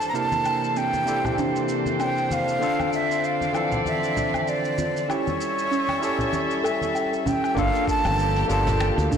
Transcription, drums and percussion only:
0.02 shaker
0.15 shaker
0.32 high conga, shaker
0.45 low woodblock, shaker
0.64 shaker
0.76 shaker
0.94 high conga, shaker
1.07 shaker
1.25 low conga, low woodblock, shaker
1.38 high conga, shaker
1.56 shaker
1.69 shaker
1.86 high conga, shaker
2.00 low woodblock, shaker
2.18 shaker
2.31 high conga, shaker
2.48 shaker
2.63 shaker
2.80 high conga, low woodblock, shaker
2.93 shaker
3.11 shaker
3.24 shaker
3.41 high conga, shaker
3.55 low woodblock, shaker
3.72 low conga, shaker
3.86 high conga, shaker
4.04 shaker
4.17 low conga, shaker
4.34 high conga, low woodblock, shaker
4.47 shaker
4.65 shaker
4.78 high conga, shaker
4.97 shaker
5.10 low woodblock, shaker
5.27 high conga, shaker
5.41 shaker
5.59 shaker
5.73 shaker
5.89 high conga, low woodblock, shaker
6.03 shaker
6.19 low conga, shaker
6.33 high conga, shaker
6.51 shaker
6.64 low woodblock, shaker
6.81 high conga, shaker
6.96 shaker
7.13 shaker
7.26 high conga, low conga, shaker
7.44 low woodblock, shaker
7.57 kick, shaker
7.74 closed hi-hat, shaker
7.88 kick, shaker
8.05 closed hi-hat, high conga, low woodblock, shaker
8.19 shaker
8.36 closed hi-hat
8.50 shaker
8.67 closed hi-hat, low conga, shaker
8.80 finger snap, high conga, low woodblock, shaker
8.99 closed hi-hat, shaker
9.11 kick, low conga, shaker

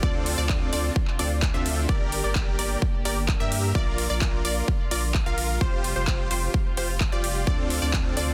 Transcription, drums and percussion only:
0.03 kick
0.26 open hi-hat
0.49 kick, clap
0.73 open hi-hat
0.96 kick
1.07 clap
1.19 open hi-hat
1.42 kick, clap
1.66 open hi-hat
1.89 kick
2.12 open hi-hat
2.35 kick, clap
2.59 open hi-hat
2.82 kick
3.05 open hi-hat
3.28 kick, clap
3.52 open hi-hat
3.75 kick
3.98 open hi-hat
4.21 kick, clap
4.45 open hi-hat
4.68 kick
4.91 open hi-hat
5.14 kick, clap
5.38 open hi-hat
5.61 kick
5.84 open hi-hat
6.07 kick, clap
6.31 open hi-hat
6.54 kick
6.77 open hi-hat
7.00 kick, clap
7.24 open hi-hat
7.47 kick
7.70 open hi-hat
7.93 kick, clap
8.17 open hi-hat

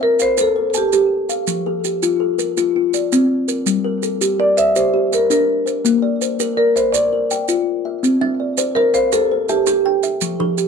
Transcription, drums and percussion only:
0.19 maracas
0.38 maracas
0.74 maracas
0.93 maracas
1.29 maracas
1.47 maracas
1.84 maracas
2.03 maracas
2.39 maracas
2.57 maracas
2.94 maracas
3.12 maracas
3.48 maracas
3.66 maracas
4.03 maracas
4.21 maracas
4.58 maracas
4.76 maracas
5.13 maracas
5.31 maracas
5.67 maracas
5.85 maracas
6.21 maracas
6.40 maracas
6.77 maracas
6.94 maracas
7.31 maracas
7.48 maracas
8.04 maracas
8.58 maracas
8.94 maracas
9.12 maracas
9.49 maracas
9.67 maracas
10.03 maracas
10.21 maracas
10.58 maracas

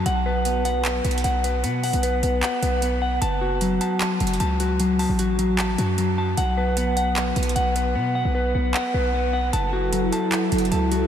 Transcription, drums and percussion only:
0.06 closed hi-hat
0.45 closed hi-hat
0.65 closed hi-hat
0.85 clap, closed hi-hat
1.05 closed hi-hat
1.11 closed hi-hat
1.18 closed hi-hat
1.24 closed hi-hat
1.44 closed hi-hat
1.64 closed hi-hat
1.83 closed hi-hat, open hi-hat
1.93 closed hi-hat
2.03 closed hi-hat
2.23 closed hi-hat
2.43 clap, closed hi-hat
2.63 closed hi-hat
2.82 closed hi-hat
3.22 closed hi-hat
3.61 closed hi-hat
3.81 closed hi-hat
4.01 clap, closed hi-hat
4.20 closed hi-hat
4.27 closed hi-hat
4.34 closed hi-hat
4.40 closed hi-hat
4.60 closed hi-hat
4.80 closed hi-hat
4.99 open hi-hat
5.19 closed hi-hat
5.39 closed hi-hat
5.58 clap, closed hi-hat
5.78 closed hi-hat
5.98 closed hi-hat
6.37 closed hi-hat
6.77 closed hi-hat
6.97 closed hi-hat
7.16 clap, closed hi-hat
7.36 closed hi-hat
7.43 closed hi-hat
7.49 closed hi-hat
7.56 closed hi-hat
7.76 closed hi-hat
8.74 clap
9.53 closed hi-hat
9.93 closed hi-hat
10.13 closed hi-hat
10.32 clap, closed hi-hat
10.52 closed hi-hat
10.58 closed hi-hat
10.65 closed hi-hat
10.72 closed hi-hat
10.92 closed hi-hat

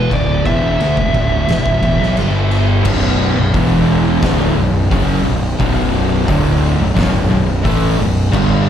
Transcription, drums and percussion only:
0.11 kick, crash
0.46 kick, crash
0.80 crash
0.97 kick
1.14 kick, crash
1.49 snare, crash
1.66 kick
1.83 kick, crash
2.03 snare
2.17 crash
2.51 crash
2.85 kick, crash
3.54 kick, open hi-hat
4.22 kick, snare, open hi-hat
4.91 kick, open hi-hat
5.60 kick, open hi-hat
6.28 kick, open hi-hat
6.97 kick, snare, open hi-hat
7.65 kick, open hi-hat
8.33 kick, crash

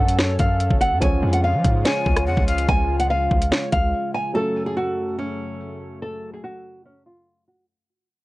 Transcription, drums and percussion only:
0.08 closed hi-hat
0.19 snare
0.39 kick, closed hi-hat
0.60 closed hi-hat
0.71 kick
0.81 closed hi-hat
1.02 kick, closed hi-hat
1.33 closed hi-hat
1.64 kick, closed hi-hat
1.85 snare, closed hi-hat
2.06 kick
2.17 cross-stick, closed hi-hat
2.37 kick
2.48 closed hi-hat
2.58 closed hi-hat
2.69 kick, closed hi-hat
3.00 closed hi-hat
3.31 kick
3.42 closed hi-hat
3.52 snare
3.72 kick, closed hi-hat

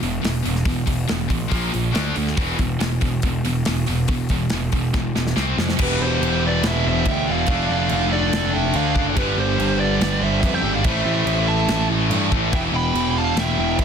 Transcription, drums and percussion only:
0.03 open hi-hat
0.25 snare, open hi-hat
0.46 open hi-hat
0.55 snare
0.66 kick, open hi-hat
0.87 kick, open hi-hat
1.09 snare, open hi-hat
1.30 kick, open hi-hat
1.51 kick, open hi-hat
1.74 open hi-hat
1.95 snare, open hi-hat
2.16 open hi-hat
2.27 snare
2.37 kick, open hi-hat
2.59 kick, open hi-hat
2.81 snare, open hi-hat
3.01 kick, open hi-hat
3.22 kick, open hi-hat
3.45 open hi-hat
3.65 snare, open hi-hat
3.87 open hi-hat
4.08 kick, open hi-hat
4.29 kick, open hi-hat
4.50 snare, open hi-hat
4.72 kick, open hi-hat
4.94 kick, snare
5.16 snare
5.27 snare
5.36 snare
5.58 snare
5.69 snare
5.79 kick, crash
6.23 crash
6.63 snare, crash
7.05 kick, crash
7.46 kick, crash
7.89 crash
8.33 snare, crash
8.73 crash
8.96 kick
9.17 kick, crash
9.60 crash
10.01 snare, crash
10.43 kick, crash
10.84 kick, crash
11.27 crash
11.68 snare, crash
12.11 crash
12.32 kick
12.53 kick, crash
12.95 crash
13.37 snare, crash
13.79 kick, crash

